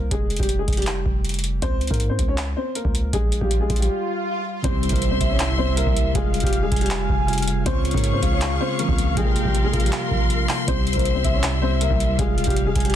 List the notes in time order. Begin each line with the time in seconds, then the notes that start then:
Already playing: C2
0.11 F1 G#3 G#4, kick, closed hi-hat
0.30 closed hi-hat
0.36 F1 G3 G4, kick, closed hi-hat
0.43 closed hi-hat
0.49 closed hi-hat
0.59 G#3 G#4
0.68 F1, kick, closed hi-hat, open hi-hat
0.73 closed hi-hat
0.77 G3 G4, closed hi-hat
0.82 closed hi-hat
0.87 clap, closed hi-hat
1.06 F1, kick
1.25 closed hi-hat
1.29 closed hi-hat
1.34 closed hi-hat
1.39 closed hi-hat
1.44 closed hi-hat
1.62 C#2 C4 C5, kick, closed hi-hat
1.81 closed hi-hat
1.87 G#2 A#3 A#4, kick, closed hi-hat
1.94 closed hi-hat
2.00 closed hi-hat
2.09 C4 C5
2.19 C#2, kick, closed hi-hat
2.28 C#4 C#5
2.38 clap, closed hi-hat
2.57 C4 C5
2.75 A#3 A#4, closed hi-hat
2.85 C#2, kick
2.95 closed hi-hat
3.13 A#1 G#3 G#4, kick, closed hi-hat, swell
3.32 closed hi-hat
3.41 A#1 G3 G4, kick
3.51 closed hi-hat
3.60 G#3 G#4
3.70 A#1, kick, closed hi-hat, open hi-hat
3.76 G4, closed hi-hat
3.80 G3, closed hi-hat
4.62 C2 C3 G3 C4 E4 G4 C5 E5 C6, kick, closed hi-hat, impact
4.83 closed hi-hat
4.89 C2 A#4, kick, closed hi-hat
4.94 A#3, closed hi-hat
5.02 closed hi-hat
5.11 C4 C5
5.21 C2 E5, kick, closed hi-hat
5.30 C#4 C#5
5.39 clap, closed hi-hat
5.58 C4 C5
5.77 A#3 A#4, closed hi-hat
5.87 C2, kick
5.97 closed hi-hat
6.13 F1 C3 G3 G#3 F4 G#4 F5, kick, closed hi-hat
6.34 closed hi-hat
6.40 F1 G3 G4, kick, closed hi-hat
6.47 closed hi-hat
6.53 closed hi-hat
6.63 G#3 G#4
6.72 F1 G#5, kick, closed hi-hat, open hi-hat
6.76 closed hi-hat
6.81 G3 G4, closed hi-hat
6.86 closed hi-hat
6.90 clap, closed hi-hat
7.09 F1, kick
7.27 C3 G3 F4, closed hi-hat
7.33 closed hi-hat
7.38 closed hi-hat
7.42 closed hi-hat
7.48 closed hi-hat
7.64 C#2 C#3 G#3 C4 C#4 F4 G#4 C5 C#5 F5 C#6, kick, closed hi-hat
7.85 closed hi-hat
7.91 G#2 A#3 A#4, kick, closed hi-hat
7.97 closed hi-hat
8.04 closed hi-hat
8.13 C4 C5
8.22 C#2 F5, kick, closed hi-hat
8.32 C#4 C#5
8.41 clap, closed hi-hat
8.61 C4 C5
8.78 E3 G#3 A#3 C4 C#4 A#4, closed hi-hat
8.89 C#2, kick
8.98 closed hi-hat
9.15 A#1 C3 F3 G#3 A#3 F4 G#4 A#4 G5 C6, kick, closed hi-hat
9.36 closed hi-hat
9.45 A#1 G3 G4, kick
9.55 closed hi-hat
9.64 G#3 G#4
9.73 A#1 F5, kick, closed hi-hat, open hi-hat
9.80 G4, closed hi-hat
9.84 G3, closed hi-hat
9.92 clap, closed hi-hat
10.11 A#1, kick
10.30 closed hi-hat
10.49 clap, open hi-hat
10.66 C2 C3 G3 C4 E4 G4 C5 E5, kick, closed hi-hat
10.87 closed hi-hat
10.93 C2 A#4, kick, closed hi-hat
10.98 A#3, closed hi-hat
11.05 closed hi-hat
11.15 C4 C5
11.24 C2 E5, kick, closed hi-hat
11.34 C#4 C#5
11.43 clap, closed hi-hat
11.62 C4 C5
11.81 A#3 A#4, closed hi-hat
11.91 C2, kick
12.00 closed hi-hat
12.17 F1 C3 G3 G#3 F4 G#4 F5, kick, closed hi-hat
12.38 closed hi-hat
12.44 F1 G3 G4, kick, closed hi-hat
12.50 closed hi-hat
12.57 closed hi-hat
12.66 G#3 G#4
12.75 F1 G#5, kick, closed hi-hat, open hi-hat
12.80 closed hi-hat
12.85 G3 G4, closed hi-hat
12.90 closed hi-hat